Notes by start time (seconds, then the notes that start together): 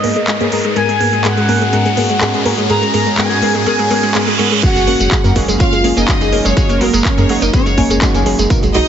Already playing: G#2 G#3 D#4 A#4 B4 D#5, riser
0.03 G#2 A#3 B3 G#4 A#4, open hi-hat
0.16 G#3, closed hi-hat
0.28 G#3, clap, closed hi-hat
0.40 G#2 A#3 B3 G#4 C#5, closed hi-hat
0.52 G#2 G#3 B3 G#4 A#4, open hi-hat
0.65 G#3
0.76 G#2 G#3 B3 C#4 F#4 G#4 A#4 G#5, closed hi-hat
0.89 G#3, closed hi-hat
1.00 G#2 A#3 B3 G#4 A#4, open hi-hat
1.13 G#3, closed hi-hat
1.24 G#2 G#3 B3 G#4 A#4 F#5, clap, closed hi-hat
1.37 G#3, closed hi-hat
1.49 G#2 A#3 B3 G#4 A#4, open hi-hat
1.61 G#3, closed hi-hat
1.73 G#2 G#3 B3 G#4 A#4 F#5, closed hi-hat
1.86 G#3, closed hi-hat
1.97 G#2 A#3 B3 G#4 A#4, open hi-hat
2.10 G#3, closed hi-hat
2.21 G#2 G#3 B3 G#4 A#4, clap, closed hi-hat
2.34 G#3, closed hi-hat
2.45 G#2 A#3 B3 G#4 A#4, open hi-hat
2.58 G#3, closed hi-hat
2.69 G#2 G#3 B3 G#4 A#4 A#5, closed hi-hat
2.82 G#3, closed hi-hat
2.94 G#2 G#3 B3 G#4 A#4 A#5, open hi-hat
3.06 G#3, closed hi-hat
3.18 G#2 G#3 B3 G#4 A#4 G#5, clap, closed hi-hat
3.31 G#3, closed hi-hat
3.42 G#2 G#3 B3 G#4 A#4, open hi-hat
3.55 G#3, closed hi-hat
3.66 G#2 G#3 B3 G#4 A#4 G#5, closed hi-hat, reverse cymbal
3.79 G#3, closed hi-hat
3.90 G#2 G#3 B3 G#4 A#4, open hi-hat
4.03 G#3, closed hi-hat
4.15 G#2 G#3 B3 G#4 A#4, clap, closed hi-hat
4.27 G#3, closed hi-hat
4.39 G#2 G#3 B3 G#4 A#4, open hi-hat
4.52 G#3, closed hi-hat
4.63 F#3 G#3 A#3 C#4 F#4 F#5, kick, closed hi-hat, crash, tambourine
4.76 F#1 G#3, closed hi-hat, tambourine
4.87 F#1 A#3 C#4 F#4, open hi-hat
5.00 F#1 G#3, closed hi-hat, tambourine
5.11 G#3, kick, clap, closed hi-hat, tambourine
5.24 F#2 A#3 C#4 A#4, closed hi-hat, tambourine
5.36 F#1 G#3 A#3 C#4 F#4, kick, open hi-hat
5.48 F#1 G#3, closed hi-hat, tambourine
5.60 A#3 C#4 F4 F#4 F5, kick, closed hi-hat, tambourine
5.73 F#1 G#3, closed hi-hat, tambourine
5.84 F#1 G#3 A#3 C#4 G#4, open hi-hat
5.97 F#1 A#3 C#4 D#4 G#4 D#5, closed hi-hat, tambourine
6.08 G#3 F#4, kick, clap, closed hi-hat, tambourine
6.21 F#1 G#3 A#3 C#4 G#4, closed hi-hat, tambourine
6.32 F#1 A#3 C#4 G#4, open hi-hat
6.45 F#1 G#3 C#4 C#5, closed hi-hat, tambourine
6.57 G#3 A#3 C#4 D#4 F#4, kick, closed hi-hat, tambourine
6.69 F#1 A#3, closed hi-hat, tambourine
6.81 F#1 G#3 A#3 C#4 F#4 A#4, open hi-hat
6.93 F#1 G#3, tambourine
7.05 A#3 C#4 C#5, kick, clap, closed hi-hat, tambourine
7.18 F#2 G#3 A#3 C#4 A#4, closed hi-hat, tambourine
7.29 F#1 G#3 A#3 C#4 F#4, open hi-hat
7.42 F#1 A#3 D#4 D#5, closed hi-hat, tambourine
7.53 G#3 A#3 C#4 F#4 C#5, kick, closed hi-hat, tambourine
7.66 F#1 G#3, closed hi-hat, tambourine
7.78 F#1 A#3 C#4 G#4, kick, open hi-hat
7.90 F#1 G#3 A#3 C#4 G#4, closed hi-hat, tambourine
8.02 G#3 A#3 C#4 F#4, kick, clap, closed hi-hat, tambourine
8.14 F#1 A#3 C#4 G#4, closed hi-hat, tambourine
8.26 F#1 G#3 A#3 C#4 G#4, open hi-hat
8.39 F#1 G#3, closed hi-hat, tambourine
8.50 B2 A#3 B3 D#4 F#4, kick, closed hi-hat, tambourine
8.63 B1 G#3, closed hi-hat, tambourine
8.74 B1 B2 G#3 B3 D#4 F#4 D#5, open hi-hat